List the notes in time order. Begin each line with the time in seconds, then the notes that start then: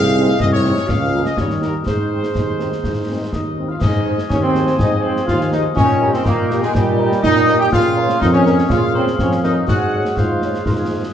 Already playing: C2 G#3 D#4 G#4 F5 F6
0.16 G#3 C4 D#4
0.28 snare
0.39 C2 G4 D#5 D#6, concert bass drum, snare
0.52 C#5 C#6
0.64 G#3 C4 D#4, snare
0.76 snare
0.87 C#2 A#3 C#4 F4 F5 F6, concert bass drum, snare
1.13 F3 A#3 F4
1.24 D#5 D#6, snare
1.37 D#2 G3 D#4 G4 C#5 C#6, concert bass drum, snare
1.50 snare
1.62 G3 A#3 D#4 A#4 A#5, snare
1.85 G#2 G#3 D#4 G#4 C5 C6, concert bass drum, snare
2.10 G#3 C4 D#4
2.23 snare
2.35 D#2, concert bass drum, snare
2.59 G#3 C4 D#4, snare
2.72 snare
2.83 G#2, concert bass drum, snare
3.08 G#3 C4 D#4
3.32 D#2 D#4 D#5 D#6, concert bass drum, snare
3.58 G#3 C4 D#4
3.68 F4 F5 F6
3.80 G#2 D#4 C5 D#5 G#5 D#6, concert bass drum, snare, crash
4.06 G#4 C5
4.18 snare
4.29 D#2 F3 C#4 C#5 C#6, concert bass drum, snare
4.42 C4 C5 C6
4.55 G#4 C5, snare
4.67 snare
4.78 G#2 D#4 D#5 D#6, concert bass drum, snare
5.02 C4 G#4 C5 C6
5.16 snare
5.26 D#2 F4 F5 F6, concert bass drum, snare
5.40 snare
5.51 D#4 G#4 C5 D#5 D#6, snare
5.75 A#2 D#3 C#4 C#5 D#5 G5 C#6, concert bass drum, snare
6.01 G4 A#4 D#5
6.13 C4 C5 C6, snare
6.25 A#2 A#3 A#4 A#5, concert bass drum, snare
6.50 G4 A#4 D#5, snare
6.61 G#3 G#4 G#5, snare
6.73 A#2 G3 G4 G5, concert bass drum, snare
6.99 G4 A#4 D#5
7.12 snare
7.22 A#2 D#4 D#5 D#6, concert bass drum, snare
7.36 snare
7.48 G4 A#4 D#5, snare
7.59 G4 G5 G6
7.72 A#2 C#3 F4 C#5 F5 F6, concert bass drum, snare, crash
7.97 A#4 C#5
8.09 snare
8.20 F2 D#3 D#4 D#5 D#6, concert bass drum, snare
8.32 C#4 C#5 C#6
8.46 A#4 C#5, snare
8.58 snare
8.68 A#2 C#3 F4 F5 F6, concert bass drum, snare
8.94 C4 A#4 C5 C#5 C6
9.07 snare
9.19 F2 F3 C#4 C#5 C#6, concert bass drum, snare
9.31 snare
9.43 D#4 A#4 C#5 D#5 D#6, snare
9.67 G#2 G#3 F#4 C#5 F#5 G#5 F#6, concert bass drum, snare
9.92 G#4 C#5
10.05 snare
10.16 G#2 F4 C5 F5 F6, concert bass drum, snare
10.41 G#4 C#5, snare
10.54 snare
10.65 G#2 A#4, concert bass drum, snare
10.79 G#4
10.90 G#4 C5 D#5